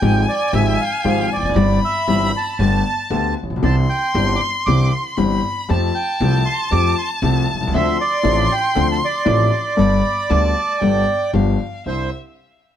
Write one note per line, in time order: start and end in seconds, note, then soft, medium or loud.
0.00 0.24 G#1 medium
0.00 0.24 G#1 loud
0.00 0.23 G#2 medium
0.00 0.23 F3 medium
0.00 0.24 G#3 medium
0.00 0.24 C4 medium
0.00 0.24 G4 medium
0.00 0.26 G5 loud
0.00 1.57 G#5 loud
0.29 0.52 D5 medium
0.53 0.75 G#1 loud
0.53 0.75 G#1 medium
0.53 0.75 G#2 loud
0.53 0.75 F3 medium
0.53 0.75 G#3 medium
0.53 0.75 C4 medium
0.53 0.75 G4 medium
0.53 0.80 E5 loud
0.81 1.06 F5 loud
1.04 1.26 G#1 loud
1.04 1.26 G#2 loud
1.04 1.26 F3 medium
1.04 1.26 G#3 medium
1.04 1.26 C4 medium
1.04 1.26 G4 medium
1.04 1.30 F5 loud
1.33 1.42 E1 medium
1.33 1.43 E2 medium
1.33 1.80 D5 loud
1.43 1.49 F1 medium
1.43 1.50 F2 medium
1.49 1.55 F#1 medium
1.49 1.56 F#2 medium
1.55 1.77 G1 loud
1.55 1.78 G1 loud
1.55 1.77 G2 loud
1.55 1.77 E3 medium
1.55 1.77 G3 medium
1.55 1.78 C4 medium
1.55 1.78 G4 medium
1.55 2.59 B5 loud
1.85 2.31 E5 loud
2.07 2.29 G1 loud
2.07 2.29 G1 medium
2.07 2.29 G2 medium
2.07 2.29 E3 medium
2.07 2.29 G3 medium
2.07 2.29 C4 medium
2.07 2.30 G4 medium
2.37 3.34 A5 loud
2.59 2.81 G1 loud
2.59 2.81 G1 medium
2.59 2.81 G2 medium
2.59 2.81 D3 medium
2.59 2.81 A3 medium
2.59 2.81 B3 medium
2.59 2.82 G4 medium
2.59 3.33 A5 loud
3.10 3.32 D2 loud
3.10 3.33 D2 medium
3.10 3.33 D3 loud
3.10 3.33 A3 medium
3.10 3.33 B3 medium
3.10 3.33 G4 medium
3.43 3.49 A1 medium
3.50 3.55 A#1 medium
3.50 3.56 A#1 medium
3.56 3.62 B1 medium
3.56 3.63 B1 medium
3.63 3.84 C2 loud
3.63 3.85 C2 medium
3.63 3.84 C3 loud
3.63 3.85 E3 medium
3.63 3.84 C4 medium
3.63 3.84 D4 medium
3.63 3.84 G4 medium
3.63 3.76 A5 medium
3.63 5.18 C6 loud
3.89 4.31 G5 medium
4.15 4.36 G1 loud
4.15 4.36 G1 medium
4.15 4.36 G2 medium
4.15 4.36 E3 medium
4.15 4.36 C4 medium
4.15 4.36 D4 medium
4.15 4.36 G4 medium
4.36 4.51 C6 loud
4.36 4.41 D6 medium
4.66 4.88 C2 loud
4.66 4.88 C2 medium
4.66 4.88 C3 medium
4.66 4.88 E3 medium
4.66 4.88 C4 medium
4.66 4.88 D4 medium
4.66 4.88 G4 medium
4.66 4.92 D6 loud
4.91 5.03 C6 medium
5.16 5.39 G1 loud
5.16 5.39 G1 medium
5.16 5.39 G2 medium
5.16 5.39 E3 medium
5.16 5.39 C4 medium
5.16 5.39 D4 medium
5.16 5.39 G4 medium
5.16 5.71 B5 loud
5.69 5.90 F2 loud
5.69 5.91 F2 loud
5.69 5.90 F3 loud
5.69 5.90 A3 medium
5.69 5.90 C4 medium
5.69 5.90 G4 medium
5.69 7.75 A5 loud
5.69 5.81 A5 loud
5.95 6.42 G5 medium
6.20 6.42 C2 loud
6.20 6.42 C2 medium
6.20 6.42 C3 medium
6.20 6.42 F3 medium
6.20 6.42 A3 medium
6.20 6.42 C4 medium
6.20 6.42 G4 medium
6.46 6.69 C6 loud
6.71 6.93 F2 loud
6.71 6.92 F3 loud
6.71 6.93 A3 medium
6.71 6.93 C4 medium
6.71 6.93 G4 medium
6.71 6.95 D6 loud
6.98 7.09 C6 medium
7.22 7.44 C2 loud
7.22 7.44 C3 loud
7.22 7.44 F3 medium
7.22 7.44 A3 medium
7.22 7.44 C4 medium
7.22 7.44 G4 medium
7.54 7.60 B1 medium
7.54 7.61 B1 medium
7.61 7.67 C2 medium
7.67 7.73 C#2 loud
7.67 7.73 C#2 medium
7.73 7.95 D2 loud
7.73 7.96 D3 medium
7.73 7.96 F3 medium
7.73 7.96 C4 medium
7.73 7.96 D4 medium
7.73 7.96 A4 medium
7.73 7.98 E5 loud
7.73 9.78 C6 loud
8.01 8.53 D5 loud
8.23 8.46 A1 loud
8.23 8.45 A2 medium
8.23 8.45 F3 medium
8.23 8.46 C4 medium
8.23 8.46 D4 medium
8.23 8.46 A4 medium
8.52 8.87 G5 loud
8.75 8.97 D2 loud
8.75 8.98 D2 loud
8.75 8.97 D3 medium
8.75 8.97 F3 medium
8.75 8.97 C4 medium
8.75 8.97 D4 medium
8.75 8.97 A4 medium
8.92 8.97 A5 loud
9.05 11.31 D5 loud
9.25 9.48 A1 loud
9.25 9.48 A2 loud
9.25 9.48 F3 medium
9.25 9.48 C4 medium
9.25 9.48 D4 medium
9.25 9.48 A4 medium
9.77 10.00 G1 loud
9.77 9.99 G2 loud
9.77 9.99 G3 medium
9.77 9.99 B3 medium
9.77 9.99 D4 medium
9.77 9.99 A4 loud
9.77 10.32 B5 loud
10.30 10.52 D2 loud
10.30 10.52 D3 loud
10.30 10.52 G3 medium
10.30 10.51 B3 medium
10.30 10.52 D4 medium
10.30 10.52 A4 medium
10.30 10.83 A5 loud
10.81 11.03 G1 medium
10.81 11.04 G1 loud
10.81 11.03 G2 medium
10.81 11.03 G3 medium
10.81 11.03 B3 medium
10.81 11.03 D4 medium
10.81 11.03 A4 medium
10.81 11.36 G5 loud
11.33 11.55 G1 loud
11.33 11.55 G1 medium
11.33 11.55 G2 medium
11.33 11.55 F3 medium
11.33 11.55 B3 medium
11.33 11.56 D4 medium
11.33 11.55 G4 medium
11.33 11.86 F5 medium
11.86 12.07 C2 medium
11.86 12.07 C4 medium
11.86 12.07 D4 medium
11.86 12.07 E4 medium
11.86 12.10 C5 medium
11.86 12.10 E5 medium